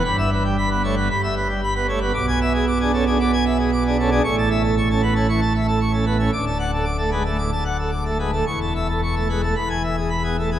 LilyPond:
<<
  \new Staff \with { instrumentName = "Pipe organ" } { \time 4/4 \key e \dorian \tempo 4 = 114 b''16 e''16 b'16 g16 b''16 b'16 cis''16 b'16 b''16 e''16 b'16 g16 b''16 b'16 cis''16 b'16 | \key a \major d'''16 gis''16 e''16 gis'16 d'''16 gis'16 a'16 gis'16 d'''16 gis''16 e''16 gis'16 d'''16 gis'16 a'16 gis'16 | cis'''16 a''16 e''16 a'16 cis'''16 a'16 b'16 a'16 cis'''16 a''16 e''16 a'16 cis'''16 a'16 b'16 a'16 | d'''16 a''16 fis''16 a'16 d'''16 a'16 b'16 a'16 d'''16 a''16 fis''16 a'16 d'''16 a'16 b'16 a'16 |
cis'''16 a''16 e''16 a'16 cis'''16 a'16 b'16 a'16 b''16 gis''16 e''16 gis'16 b''16 gis'16 a'16 gis'16 | }
  \new Staff \with { instrumentName = "Pipe organ" } { \time 4/4 \key e \dorian << { g,4~ g,16 b16 a16 b16 g,4~ g,16 b16 a16 b16 | \key a \major b,4~ b,16 d'16 cis'16 d'16 b16 r4 d'16 cis'16 d'16 | a,4~ a,16 cis'16 b16 cis'16 e16 r4 cis'16 b16 cis'16 | d,4~ d,16 a16 gis16 a16 a,16 r4 a16 gis16 a16 |
e,4~ e,16 a16 gis16 a16 e,4~ e,16 b16 a16 b16 | } \\ { g,,2 g,,2 | b,,1 | a,,1 | d,,1 |
e,,2 e,,2 | } >> }
>>